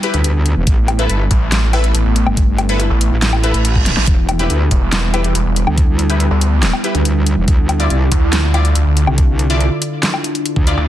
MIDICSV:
0, 0, Header, 1, 7, 480
1, 0, Start_track
1, 0, Tempo, 425532
1, 756, Time_signature, 4, 2, 24, 8
1, 12273, End_track
2, 0, Start_track
2, 0, Title_t, "Synth stab"
2, 0, Program_c, 0, 62
2, 36, Note_on_c, 0, 67, 87
2, 37, Note_on_c, 0, 64, 90
2, 37, Note_on_c, 0, 71, 102
2, 160, Note_off_c, 0, 64, 0
2, 160, Note_off_c, 0, 67, 0
2, 161, Note_off_c, 0, 71, 0
2, 1116, Note_on_c, 0, 64, 88
2, 1116, Note_on_c, 0, 69, 78
2, 1116, Note_on_c, 0, 71, 95
2, 1314, Note_off_c, 0, 64, 0
2, 1314, Note_off_c, 0, 69, 0
2, 1314, Note_off_c, 0, 71, 0
2, 1956, Note_on_c, 0, 64, 92
2, 1956, Note_on_c, 0, 69, 84
2, 1956, Note_on_c, 0, 71, 104
2, 2080, Note_off_c, 0, 64, 0
2, 2080, Note_off_c, 0, 69, 0
2, 2080, Note_off_c, 0, 71, 0
2, 3035, Note_on_c, 0, 64, 86
2, 3035, Note_on_c, 0, 69, 78
2, 3035, Note_on_c, 0, 71, 95
2, 3234, Note_off_c, 0, 64, 0
2, 3234, Note_off_c, 0, 69, 0
2, 3234, Note_off_c, 0, 71, 0
2, 3875, Note_on_c, 0, 64, 89
2, 3875, Note_on_c, 0, 71, 102
2, 3876, Note_on_c, 0, 69, 84
2, 4000, Note_off_c, 0, 64, 0
2, 4000, Note_off_c, 0, 69, 0
2, 4000, Note_off_c, 0, 71, 0
2, 4956, Note_on_c, 0, 64, 86
2, 4956, Note_on_c, 0, 67, 78
2, 4956, Note_on_c, 0, 71, 98
2, 5154, Note_off_c, 0, 64, 0
2, 5154, Note_off_c, 0, 67, 0
2, 5154, Note_off_c, 0, 71, 0
2, 5795, Note_on_c, 0, 71, 102
2, 5796, Note_on_c, 0, 64, 93
2, 5796, Note_on_c, 0, 67, 84
2, 5920, Note_off_c, 0, 64, 0
2, 5920, Note_off_c, 0, 67, 0
2, 5920, Note_off_c, 0, 71, 0
2, 6876, Note_on_c, 0, 64, 83
2, 6876, Note_on_c, 0, 67, 78
2, 6876, Note_on_c, 0, 71, 95
2, 7074, Note_off_c, 0, 64, 0
2, 7074, Note_off_c, 0, 67, 0
2, 7074, Note_off_c, 0, 71, 0
2, 7716, Note_on_c, 0, 64, 90
2, 7716, Note_on_c, 0, 67, 85
2, 7717, Note_on_c, 0, 71, 104
2, 7840, Note_off_c, 0, 64, 0
2, 7840, Note_off_c, 0, 67, 0
2, 7840, Note_off_c, 0, 71, 0
2, 8796, Note_on_c, 0, 64, 86
2, 8796, Note_on_c, 0, 65, 78
2, 8796, Note_on_c, 0, 74, 95
2, 8994, Note_off_c, 0, 64, 0
2, 8994, Note_off_c, 0, 65, 0
2, 8994, Note_off_c, 0, 74, 0
2, 9636, Note_on_c, 0, 64, 92
2, 9636, Note_on_c, 0, 65, 85
2, 9636, Note_on_c, 0, 74, 98
2, 9760, Note_off_c, 0, 64, 0
2, 9760, Note_off_c, 0, 65, 0
2, 9760, Note_off_c, 0, 74, 0
2, 10716, Note_on_c, 0, 64, 86
2, 10716, Note_on_c, 0, 65, 79
2, 10716, Note_on_c, 0, 74, 97
2, 10914, Note_off_c, 0, 64, 0
2, 10914, Note_off_c, 0, 65, 0
2, 10914, Note_off_c, 0, 74, 0
2, 12035, Note_on_c, 0, 64, 78
2, 12035, Note_on_c, 0, 65, 72
2, 12035, Note_on_c, 0, 74, 86
2, 12160, Note_off_c, 0, 64, 0
2, 12160, Note_off_c, 0, 65, 0
2, 12160, Note_off_c, 0, 74, 0
2, 12273, End_track
3, 0, Start_track
3, 0, Title_t, "Ambient pad"
3, 0, Program_c, 1, 92
3, 0, Note_on_c, 1, 55, 81
3, 0, Note_on_c, 1, 59, 73
3, 0, Note_on_c, 1, 64, 73
3, 710, Note_off_c, 1, 64, 0
3, 717, Note_off_c, 1, 59, 0
3, 718, Note_off_c, 1, 55, 0
3, 755, Note_on_c, 1, 57, 81
3, 755, Note_on_c, 1, 64, 89
3, 756, Note_on_c, 1, 59, 75
3, 4557, Note_off_c, 1, 57, 0
3, 4557, Note_off_c, 1, 59, 0
3, 4596, Note_on_c, 1, 55, 84
3, 4597, Note_on_c, 1, 59, 74
3, 8397, Note_off_c, 1, 55, 0
3, 8398, Note_off_c, 1, 59, 0
3, 8436, Note_on_c, 1, 50, 83
3, 8436, Note_on_c, 1, 62, 74
3, 8436, Note_on_c, 1, 65, 74
3, 8436, Note_on_c, 1, 69, 90
3, 12230, Note_off_c, 1, 64, 0
3, 12237, Note_off_c, 1, 50, 0
3, 12237, Note_off_c, 1, 62, 0
3, 12237, Note_off_c, 1, 69, 0
3, 12238, Note_off_c, 1, 65, 0
3, 12273, End_track
4, 0, Start_track
4, 0, Title_t, "Wobble bass"
4, 0, Program_c, 2, 39
4, 156, Note_on_c, 2, 38, 102
4, 617, Note_off_c, 2, 38, 0
4, 635, Note_on_c, 2, 28, 103
4, 736, Note_off_c, 2, 28, 0
4, 755, Note_on_c, 2, 33, 94
4, 1216, Note_off_c, 2, 33, 0
4, 1235, Note_on_c, 2, 31, 95
4, 1456, Note_off_c, 2, 31, 0
4, 2555, Note_on_c, 2, 31, 101
4, 3256, Note_off_c, 2, 31, 0
4, 3515, Note_on_c, 2, 33, 97
4, 3976, Note_off_c, 2, 33, 0
4, 3995, Note_on_c, 2, 33, 97
4, 4456, Note_off_c, 2, 33, 0
4, 4595, Note_on_c, 2, 28, 97
4, 5056, Note_off_c, 2, 28, 0
4, 5075, Note_on_c, 2, 38, 95
4, 5296, Note_off_c, 2, 38, 0
4, 6395, Note_on_c, 2, 38, 100
4, 7096, Note_off_c, 2, 38, 0
4, 7835, Note_on_c, 2, 38, 98
4, 8296, Note_off_c, 2, 38, 0
4, 8315, Note_on_c, 2, 28, 103
4, 8416, Note_off_c, 2, 28, 0
4, 8435, Note_on_c, 2, 38, 95
4, 8896, Note_off_c, 2, 38, 0
4, 8915, Note_on_c, 2, 36, 98
4, 9136, Note_off_c, 2, 36, 0
4, 10236, Note_on_c, 2, 36, 103
4, 10937, Note_off_c, 2, 36, 0
4, 11915, Note_on_c, 2, 38, 97
4, 12136, Note_off_c, 2, 38, 0
4, 12273, End_track
5, 0, Start_track
5, 0, Title_t, "Detuned saw bass"
5, 0, Program_c, 3, 39
5, 1475, Note_on_c, 3, 33, 99
5, 2176, Note_off_c, 3, 33, 0
5, 2196, Note_on_c, 3, 33, 96
5, 2297, Note_off_c, 3, 33, 0
5, 2316, Note_on_c, 3, 33, 93
5, 2537, Note_off_c, 3, 33, 0
5, 3275, Note_on_c, 3, 33, 97
5, 3496, Note_off_c, 3, 33, 0
5, 4475, Note_on_c, 3, 33, 101
5, 4576, Note_off_c, 3, 33, 0
5, 5315, Note_on_c, 3, 28, 99
5, 6016, Note_off_c, 3, 28, 0
5, 6035, Note_on_c, 3, 28, 98
5, 6137, Note_off_c, 3, 28, 0
5, 6156, Note_on_c, 3, 28, 94
5, 6377, Note_off_c, 3, 28, 0
5, 7116, Note_on_c, 3, 38, 98
5, 7577, Note_off_c, 3, 38, 0
5, 9155, Note_on_c, 3, 38, 99
5, 9856, Note_off_c, 3, 38, 0
5, 9876, Note_on_c, 3, 38, 100
5, 9977, Note_off_c, 3, 38, 0
5, 9996, Note_on_c, 3, 38, 96
5, 10217, Note_off_c, 3, 38, 0
5, 12156, Note_on_c, 3, 38, 99
5, 12256, Note_off_c, 3, 38, 0
5, 12273, End_track
6, 0, Start_track
6, 0, Title_t, "Reverse cymbal"
6, 0, Program_c, 4, 119
6, 3635, Note_on_c, 4, 60, 64
6, 4595, Note_off_c, 4, 60, 0
6, 12273, End_track
7, 0, Start_track
7, 0, Title_t, "Drums"
7, 35, Note_on_c, 9, 42, 52
7, 147, Note_off_c, 9, 42, 0
7, 155, Note_on_c, 9, 42, 38
7, 268, Note_off_c, 9, 42, 0
7, 275, Note_on_c, 9, 42, 82
7, 387, Note_off_c, 9, 42, 0
7, 515, Note_on_c, 9, 42, 62
7, 627, Note_off_c, 9, 42, 0
7, 754, Note_on_c, 9, 42, 82
7, 755, Note_on_c, 9, 36, 114
7, 867, Note_off_c, 9, 42, 0
7, 868, Note_off_c, 9, 36, 0
7, 994, Note_on_c, 9, 42, 54
7, 994, Note_on_c, 9, 77, 64
7, 1107, Note_off_c, 9, 42, 0
7, 1107, Note_off_c, 9, 77, 0
7, 1115, Note_on_c, 9, 42, 38
7, 1228, Note_off_c, 9, 42, 0
7, 1235, Note_on_c, 9, 42, 54
7, 1348, Note_off_c, 9, 42, 0
7, 1475, Note_on_c, 9, 36, 60
7, 1475, Note_on_c, 9, 42, 85
7, 1587, Note_off_c, 9, 42, 0
7, 1588, Note_off_c, 9, 36, 0
7, 1715, Note_on_c, 9, 38, 120
7, 1715, Note_on_c, 9, 39, 87
7, 1715, Note_on_c, 9, 42, 84
7, 1827, Note_off_c, 9, 38, 0
7, 1827, Note_off_c, 9, 39, 0
7, 1827, Note_off_c, 9, 42, 0
7, 1955, Note_on_c, 9, 42, 53
7, 1955, Note_on_c, 9, 77, 55
7, 2067, Note_off_c, 9, 42, 0
7, 2067, Note_off_c, 9, 77, 0
7, 2075, Note_on_c, 9, 42, 39
7, 2188, Note_off_c, 9, 42, 0
7, 2195, Note_on_c, 9, 42, 84
7, 2308, Note_off_c, 9, 42, 0
7, 2435, Note_on_c, 9, 42, 67
7, 2548, Note_off_c, 9, 42, 0
7, 2555, Note_on_c, 9, 77, 86
7, 2668, Note_off_c, 9, 77, 0
7, 2675, Note_on_c, 9, 36, 120
7, 2675, Note_on_c, 9, 42, 84
7, 2788, Note_off_c, 9, 36, 0
7, 2788, Note_off_c, 9, 42, 0
7, 2916, Note_on_c, 9, 42, 56
7, 2916, Note_on_c, 9, 77, 65
7, 3028, Note_off_c, 9, 42, 0
7, 3028, Note_off_c, 9, 77, 0
7, 3035, Note_on_c, 9, 42, 39
7, 3148, Note_off_c, 9, 42, 0
7, 3155, Note_on_c, 9, 42, 58
7, 3267, Note_off_c, 9, 42, 0
7, 3395, Note_on_c, 9, 42, 85
7, 3508, Note_off_c, 9, 42, 0
7, 3635, Note_on_c, 9, 38, 117
7, 3635, Note_on_c, 9, 39, 92
7, 3635, Note_on_c, 9, 42, 87
7, 3748, Note_off_c, 9, 38, 0
7, 3748, Note_off_c, 9, 39, 0
7, 3748, Note_off_c, 9, 42, 0
7, 3755, Note_on_c, 9, 77, 65
7, 3868, Note_off_c, 9, 77, 0
7, 3875, Note_on_c, 9, 42, 55
7, 3988, Note_off_c, 9, 42, 0
7, 3995, Note_on_c, 9, 42, 40
7, 4108, Note_off_c, 9, 42, 0
7, 4115, Note_on_c, 9, 42, 84
7, 4228, Note_off_c, 9, 42, 0
7, 4235, Note_on_c, 9, 36, 62
7, 4348, Note_off_c, 9, 36, 0
7, 4355, Note_on_c, 9, 38, 63
7, 4355, Note_on_c, 9, 42, 68
7, 4468, Note_off_c, 9, 38, 0
7, 4468, Note_off_c, 9, 42, 0
7, 4476, Note_on_c, 9, 38, 75
7, 4588, Note_off_c, 9, 38, 0
7, 4595, Note_on_c, 9, 36, 122
7, 4595, Note_on_c, 9, 42, 80
7, 4708, Note_off_c, 9, 36, 0
7, 4708, Note_off_c, 9, 42, 0
7, 4836, Note_on_c, 9, 42, 54
7, 4836, Note_on_c, 9, 77, 62
7, 4948, Note_off_c, 9, 42, 0
7, 4948, Note_off_c, 9, 77, 0
7, 4956, Note_on_c, 9, 42, 39
7, 5068, Note_off_c, 9, 42, 0
7, 5075, Note_on_c, 9, 42, 57
7, 5188, Note_off_c, 9, 42, 0
7, 5315, Note_on_c, 9, 36, 63
7, 5315, Note_on_c, 9, 42, 85
7, 5427, Note_off_c, 9, 42, 0
7, 5428, Note_off_c, 9, 36, 0
7, 5555, Note_on_c, 9, 38, 125
7, 5555, Note_on_c, 9, 39, 95
7, 5555, Note_on_c, 9, 42, 82
7, 5668, Note_off_c, 9, 38, 0
7, 5668, Note_off_c, 9, 39, 0
7, 5668, Note_off_c, 9, 42, 0
7, 5795, Note_on_c, 9, 42, 54
7, 5795, Note_on_c, 9, 77, 51
7, 5908, Note_off_c, 9, 42, 0
7, 5908, Note_off_c, 9, 77, 0
7, 5915, Note_on_c, 9, 42, 39
7, 6028, Note_off_c, 9, 42, 0
7, 6035, Note_on_c, 9, 42, 83
7, 6148, Note_off_c, 9, 42, 0
7, 6276, Note_on_c, 9, 42, 66
7, 6388, Note_off_c, 9, 42, 0
7, 6396, Note_on_c, 9, 77, 84
7, 6509, Note_off_c, 9, 77, 0
7, 6515, Note_on_c, 9, 36, 127
7, 6516, Note_on_c, 9, 42, 79
7, 6628, Note_off_c, 9, 36, 0
7, 6628, Note_off_c, 9, 42, 0
7, 6755, Note_on_c, 9, 42, 55
7, 6868, Note_off_c, 9, 42, 0
7, 6876, Note_on_c, 9, 42, 38
7, 6989, Note_off_c, 9, 42, 0
7, 6995, Note_on_c, 9, 42, 56
7, 7108, Note_off_c, 9, 42, 0
7, 7235, Note_on_c, 9, 42, 82
7, 7348, Note_off_c, 9, 42, 0
7, 7475, Note_on_c, 9, 38, 127
7, 7475, Note_on_c, 9, 39, 100
7, 7475, Note_on_c, 9, 42, 85
7, 7588, Note_off_c, 9, 38, 0
7, 7588, Note_off_c, 9, 39, 0
7, 7588, Note_off_c, 9, 42, 0
7, 7596, Note_on_c, 9, 77, 60
7, 7709, Note_off_c, 9, 77, 0
7, 7715, Note_on_c, 9, 42, 53
7, 7828, Note_off_c, 9, 42, 0
7, 7836, Note_on_c, 9, 42, 39
7, 7949, Note_off_c, 9, 42, 0
7, 7955, Note_on_c, 9, 42, 81
7, 8068, Note_off_c, 9, 42, 0
7, 8195, Note_on_c, 9, 42, 65
7, 8308, Note_off_c, 9, 42, 0
7, 8435, Note_on_c, 9, 36, 127
7, 8435, Note_on_c, 9, 42, 75
7, 8548, Note_off_c, 9, 36, 0
7, 8548, Note_off_c, 9, 42, 0
7, 8675, Note_on_c, 9, 42, 52
7, 8675, Note_on_c, 9, 77, 59
7, 8788, Note_off_c, 9, 42, 0
7, 8788, Note_off_c, 9, 77, 0
7, 8795, Note_on_c, 9, 42, 37
7, 8908, Note_off_c, 9, 42, 0
7, 8915, Note_on_c, 9, 42, 52
7, 9028, Note_off_c, 9, 42, 0
7, 9155, Note_on_c, 9, 36, 67
7, 9155, Note_on_c, 9, 42, 79
7, 9267, Note_off_c, 9, 42, 0
7, 9268, Note_off_c, 9, 36, 0
7, 9394, Note_on_c, 9, 38, 127
7, 9394, Note_on_c, 9, 39, 92
7, 9394, Note_on_c, 9, 42, 79
7, 9507, Note_off_c, 9, 38, 0
7, 9507, Note_off_c, 9, 39, 0
7, 9507, Note_off_c, 9, 42, 0
7, 9635, Note_on_c, 9, 42, 50
7, 9635, Note_on_c, 9, 77, 51
7, 9747, Note_off_c, 9, 42, 0
7, 9747, Note_off_c, 9, 77, 0
7, 9756, Note_on_c, 9, 42, 37
7, 9868, Note_off_c, 9, 42, 0
7, 9875, Note_on_c, 9, 42, 80
7, 9988, Note_off_c, 9, 42, 0
7, 10115, Note_on_c, 9, 42, 61
7, 10228, Note_off_c, 9, 42, 0
7, 10235, Note_on_c, 9, 77, 77
7, 10348, Note_off_c, 9, 77, 0
7, 10354, Note_on_c, 9, 42, 77
7, 10355, Note_on_c, 9, 36, 127
7, 10467, Note_off_c, 9, 42, 0
7, 10468, Note_off_c, 9, 36, 0
7, 10594, Note_on_c, 9, 42, 51
7, 10707, Note_off_c, 9, 42, 0
7, 10715, Note_on_c, 9, 42, 35
7, 10827, Note_off_c, 9, 42, 0
7, 10834, Note_on_c, 9, 42, 50
7, 10947, Note_off_c, 9, 42, 0
7, 11074, Note_on_c, 9, 42, 78
7, 11186, Note_off_c, 9, 42, 0
7, 11314, Note_on_c, 9, 38, 127
7, 11314, Note_on_c, 9, 39, 91
7, 11314, Note_on_c, 9, 42, 77
7, 11426, Note_off_c, 9, 38, 0
7, 11426, Note_off_c, 9, 39, 0
7, 11426, Note_off_c, 9, 42, 0
7, 11434, Note_on_c, 9, 77, 64
7, 11547, Note_off_c, 9, 77, 0
7, 11554, Note_on_c, 9, 42, 50
7, 11667, Note_off_c, 9, 42, 0
7, 11675, Note_on_c, 9, 42, 36
7, 11787, Note_off_c, 9, 42, 0
7, 11794, Note_on_c, 9, 42, 77
7, 11906, Note_off_c, 9, 42, 0
7, 11915, Note_on_c, 9, 36, 66
7, 12028, Note_off_c, 9, 36, 0
7, 12034, Note_on_c, 9, 42, 59
7, 12147, Note_off_c, 9, 42, 0
7, 12273, End_track
0, 0, End_of_file